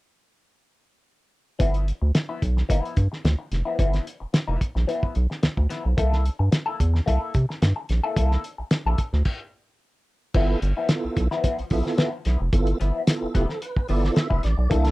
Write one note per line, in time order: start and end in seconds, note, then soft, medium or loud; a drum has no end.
1.59 1.92 G1 medium
1.59 1.85 F3 medium
1.59 1.85 B3 medium
1.59 1.86 E4 medium
1.59 kick loud
1.59 closed hi-hat medium
1.74 closed hi-hat soft
1.88 closed hi-hat medium
2.02 2.12 D2 medium
2.02 muted clean electric guitar stroke soft
2.15 muted clean electric guitar stroke soft
2.15 snare loud
2.15 closed hi-hat loud
2.29 2.41 F3 medium
2.29 2.42 B3 medium
2.29 2.42 E4 medium
2.42 2.63 B1 loud
2.42 muted clean electric guitar stroke soft
2.42 kick medium
2.42 closed hi-hat medium
2.57 muted clean electric guitar stroke soft
2.57 snare soft
2.69 2.81 G1 medium
2.69 2.80 E3 medium
2.69 2.81 A#3 medium
2.69 2.95 E4 medium
2.69 kick medium
2.69 closed hi-hat medium
2.80 2.94 F3 medium
2.80 2.95 B3 medium
2.85 closed hi-hat soft
2.97 3.08 G2 medium
2.97 kick medium
2.97 closed hi-hat medium
3.12 muted clean electric guitar stroke soft
3.12 snare soft
3.25 3.36 D2 medium
3.25 muted clean electric guitar stroke soft
3.25 snare loud
3.25 closed hi-hat medium
3.39 muted clean electric guitar stroke soft
3.52 3.63 F1 medium
3.52 snare soft
3.52 closed hi-hat medium
3.65 3.77 F3 medium
3.65 3.78 B3 medium
3.65 3.79 E4 medium
3.78 4.00 G1 loud
3.78 4.04 F3 medium
3.78 4.04 B3 medium
3.78 4.05 E4 medium
3.78 kick loud
3.78 closed hi-hat medium
3.94 snare soft
3.94 closed hi-hat soft
4.07 closed hi-hat medium
4.20 4.26 F1 soft
4.20 muted clean electric guitar stroke soft
4.33 muted clean electric guitar stroke soft
4.33 snare loud
4.33 closed hi-hat loud
4.48 4.58 F1 medium
4.48 4.59 F3 medium
4.48 4.60 B3 medium
4.48 4.60 E4 medium
4.61 muted clean electric guitar stroke soft
4.61 kick medium
4.61 closed hi-hat medium
4.75 4.85 A#1 medium
4.75 muted clean electric guitar stroke soft
4.75 snare soft
4.88 5.13 F3 medium
4.88 5.14 B3 medium
4.88 5.14 E4 medium
4.88 closed hi-hat medium
5.03 5.08 B1 soft
5.03 kick medium
5.15 5.27 B1 loud
5.15 muted clean electric guitar stroke soft
5.15 closed hi-hat medium
5.30 muted clean electric guitar stroke soft
5.30 snare soft
5.43 5.49 D2 soft
5.43 muted clean electric guitar stroke soft
5.43 snare loud
5.43 closed hi-hat medium
5.57 5.67 D2 medium
5.57 muted clean electric guitar stroke soft
5.57 kick medium
5.70 5.90 F3 medium
5.70 5.84 B3 medium
5.70 5.84 E4 medium
5.70 snare soft
5.70 closed hi-hat medium
5.85 5.95 B1 medium
5.85 muted clean electric guitar stroke soft
5.97 6.30 C2 medium
5.97 6.23 A#3 medium
5.97 6.23 E4 medium
5.97 6.24 A4 medium
5.97 kick loud
5.97 closed hi-hat medium
6.13 snare soft
6.26 closed hi-hat medium
6.39 6.49 G2 medium
6.39 muted clean electric guitar stroke soft
6.51 muted clean electric guitar stroke soft
6.51 snare loud
6.51 closed hi-hat loud
6.66 6.78 A#3 medium
6.66 6.79 E4 medium
6.66 6.80 A4 medium
6.79 7.01 E2 loud
6.79 muted clean electric guitar stroke soft
6.79 kick medium
6.79 closed hi-hat medium
6.94 muted clean electric guitar stroke soft
6.94 snare soft
7.06 7.18 C2 medium
7.06 7.32 A#3 medium
7.06 7.32 E4 medium
7.06 7.33 A4 medium
7.06 kick medium
7.06 closed hi-hat medium
7.34 7.46 C3 medium
7.34 muted clean electric guitar stroke soft
7.34 kick loud
7.34 closed hi-hat medium
7.49 muted clean electric guitar stroke soft
7.49 snare soft
7.62 7.73 G2 medium
7.62 muted clean electric guitar stroke soft
7.62 snare medium
7.62 closed hi-hat medium
7.76 muted clean electric guitar stroke medium
7.89 8.01 A#1 medium
7.89 snare soft
7.89 closed hi-hat medium
8.04 8.15 A#3 medium
8.04 8.16 E4 medium
8.04 8.17 A4 medium
8.16 8.37 C2 loud
8.16 8.41 A#3 medium
8.16 8.42 E4 medium
8.16 8.42 A4 medium
8.16 kick loud
8.16 closed hi-hat medium
8.31 snare soft
8.44 closed hi-hat medium
8.58 8.64 A#1 soft
8.58 muted clean electric guitar stroke soft
8.71 muted clean electric guitar stroke soft
8.71 snare loud
8.71 closed hi-hat loud
8.86 8.95 A#1 medium
8.86 8.99 A#3 medium
8.86 8.99 E4 medium
8.86 9.00 A4 medium
8.98 muted clean electric guitar stroke soft
8.98 kick medium
8.98 closed hi-hat medium
9.13 9.23 D2 medium
9.13 muted clean electric guitar stroke soft
9.13 snare soft
9.25 kick medium
9.25 crash medium
10.34 10.56 G1 loud
10.34 10.55 F3 medium
10.34 10.60 B3 medium
10.34 10.56 B3 medium
10.34 10.60 E4 medium
10.34 10.56 E4 medium
10.34 10.60 F4 medium
10.34 10.60 A4 medium
10.34 kick loud
10.34 crash medium
10.62 10.73 G1 loud
10.62 muted clean electric guitar stroke soft
10.62 closed hi-hat medium
10.77 10.88 F3 soft
10.77 10.89 B3 medium
10.77 10.89 E4 medium
10.89 11.28 B3 medium
10.89 11.28 E4 medium
10.89 11.28 F4 medium
10.89 11.28 A4 medium
10.89 snare loud
10.89 closed hi-hat loud
11.04 11.09 B1 medium
11.04 muted clean electric guitar stroke soft
11.17 11.28 B1 loud
11.17 kick medium
11.17 closed hi-hat medium
11.31 11.42 F3 medium
11.31 11.43 B3 medium
11.31 11.44 E4 medium
11.31 snare soft
11.43 11.64 F3 medium
11.43 11.58 B3 medium
11.43 11.57 E4 medium
11.43 kick medium
11.43 closed hi-hat medium
11.58 11.64 A#1 soft
11.58 muted clean electric guitar stroke medium
11.58 closed hi-hat soft
11.70 11.82 A#1 medium
11.70 11.87 F3 medium
11.70 12.09 B3 medium
11.70 11.86 B3 medium
11.70 12.09 E4 medium
11.70 11.84 E4 medium
11.70 12.09 F4 medium
11.70 12.10 A4 medium
11.70 kick medium
11.70 open hi-hat medium
11.85 muted clean electric guitar stroke soft
11.85 snare soft
11.98 12.18 F3 medium
11.98 12.13 B3 medium
11.98 12.11 E4 medium
11.98 snare loud
11.98 closed hi-hat medium
12.13 muted clean electric guitar stroke soft
12.25 12.37 B1 medium
12.25 12.42 F3 medium
12.25 12.40 B3 medium
12.25 12.39 E4 medium
12.25 snare soft
12.25 closed hi-hat medium
12.40 12.50 F1 medium
12.40 muted clean electric guitar stroke soft
12.53 12.74 G1 loud
12.53 12.78 B3 medium
12.53 12.78 E4 medium
12.53 12.78 F4 medium
12.53 12.78 A4 medium
12.53 kick loud
12.53 closed hi-hat medium
12.67 closed hi-hat medium
12.80 12.92 G1 loud
12.80 13.00 F3 medium
12.80 13.01 B3 medium
12.80 13.01 E4 medium
12.80 closed hi-hat medium
13.07 13.46 B3 medium
13.07 13.46 E4 medium
13.07 13.46 F4 medium
13.07 13.46 A4 medium
13.07 snare loud
13.07 closed hi-hat loud
13.22 13.27 F1 soft
13.22 muted clean electric guitar stroke medium
13.35 13.46 F1 loud
13.35 13.55 F3 medium
13.35 13.49 B3 medium
13.35 13.48 E4 medium
13.35 13.48 G4 medium
13.35 kick medium
13.35 closed hi-hat medium
13.49 13.61 A4 medium
13.49 muted clean electric guitar stroke soft
13.49 snare soft
13.62 13.88 B4 medium
13.62 closed hi-hat medium
13.77 muted clean electric guitar stroke soft
13.77 kick medium
13.88 14.10 G1 medium
13.88 14.09 F3 medium
13.88 14.28 B3 medium
13.88 14.03 B3 medium
13.88 14.28 E4 medium
13.88 14.02 E4 loud
13.88 14.28 F4 medium
13.88 14.28 A4 medium
13.88 14.15 D5 medium
13.88 open hi-hat medium
14.03 muted clean electric guitar stroke soft
14.03 snare soft
14.16 14.42 E5 medium
14.16 muted clean electric guitar stroke soft
14.16 snare loud
14.16 closed hi-hat medium
14.30 14.40 F1 loud
14.30 14.42 F3 medium
14.30 14.43 B3 medium
14.30 14.43 E4 medium
14.30 kick medium
14.43 14.55 A1 loud
14.43 14.69 D5 medium
14.43 muted clean electric guitar stroke soft
14.43 snare soft
14.43 closed hi-hat medium
14.57 14.68 B1 medium
14.57 muted clean electric guitar stroke soft
14.70 14.91 C2 loud
14.70 14.91 A#3 medium
14.70 14.91 D4 medium
14.70 14.91 E4 medium
14.70 14.91 A4 medium
14.70 kick loud
14.70 closed hi-hat medium
14.85 snare soft
14.85 closed hi-hat medium